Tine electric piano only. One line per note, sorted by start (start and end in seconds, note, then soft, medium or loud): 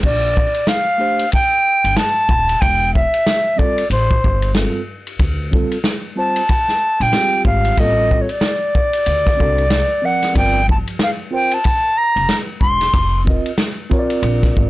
0.98 1.24 A3 medium
0.98 1.24 D4 medium
0.98 1.25 G4 medium
0.98 1.25 C5 medium
3.56 3.82 G3 medium
3.56 3.82 C4 medium
3.56 3.83 F4 medium
3.56 3.83 A4 medium
4.54 4.79 G3 medium
4.54 4.80 C4 medium
4.54 4.80 F4 medium
4.54 4.81 A4 medium
5.51 5.76 G3 medium
5.51 5.77 C4 medium
5.51 5.77 F4 medium
5.51 5.77 A4 medium
6.15 6.40 G3 medium
6.15 6.41 C4 medium
6.15 6.41 F4 medium
6.15 6.42 C5 medium
7.11 7.76 G3 medium
7.11 7.77 C4 medium
7.11 7.78 F4 medium
7.11 7.78 G4 medium
7.77 8.25 G3 medium
7.77 7.86 A#3 soft
7.77 8.26 F4 medium
7.77 8.27 A4 medium
7.85 8.29 C4 medium
9.37 9.63 C4 medium
9.37 9.63 D4 medium
9.37 9.64 F#4 medium
9.37 9.64 A4 medium
10.02 10.95 F3 medium
10.02 10.33 C4 medium
10.02 10.35 A#4 medium
10.02 10.36 D5 medium
10.34 10.59 C4 medium
10.34 10.60 F4 medium
10.34 10.60 A#4 medium
10.34 10.61 D5 medium
11.31 11.56 C4 medium
11.31 11.57 F4 medium
11.31 11.57 A#4 medium
11.31 11.58 C5 medium
13.25 13.50 C4 medium
13.25 13.51 F4 medium
13.25 13.51 A#4 medium
13.25 13.51 D#5 medium
13.90 14.70 C4 medium
13.90 14.70 F4 medium
13.90 14.70 A#4 medium
13.90 13.99 C#5 medium
13.99 14.70 D5 loud